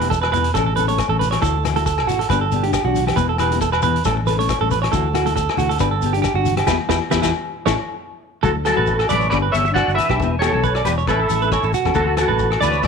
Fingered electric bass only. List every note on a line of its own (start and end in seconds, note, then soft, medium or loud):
0.00 0.33 E1 medium
0.33 0.51 E2 medium
0.55 1.00 A1 medium
1.09 1.36 A1 medium
1.43 2.07 D2 medium
2.07 2.25 G#1 medium
2.30 2.76 G1 loud
2.85 3.11 B1 medium
3.17 3.82 E1 medium
3.82 4.01 E2 medium
4.06 4.51 A1 medium
4.61 4.87 A1 medium
4.93 5.47 D2 medium
5.59 5.77 D2 medium
5.80 6.26 G1 medium
6.34 6.62 G1 medium
6.68 6.77 E2 medium
6.89 6.99 E2 medium
7.11 7.20 E2 medium
7.23 7.31 E2 medium
7.67 7.75 A1 medium
8.44 8.71 D2 medium
8.78 9.04 A1 medium
9.11 9.29 A1 medium
9.32 9.50 G1 loud
9.54 9.82 G1 medium
9.88 9.96 G1 medium
10.10 10.18 B1 medium
10.20 10.48 E1 medium
10.54 10.80 B1 medium
10.87 11.04 E1 medium
11.07 11.26 A1 medium
11.30 11.57 A1 medium
11.63 11.72 A1 medium
11.85 11.94 E2 medium
11.96 12.23 D2 medium
12.29 12.56 A1 medium
12.63 12.80 D2 medium
12.84 12.87 G1 medium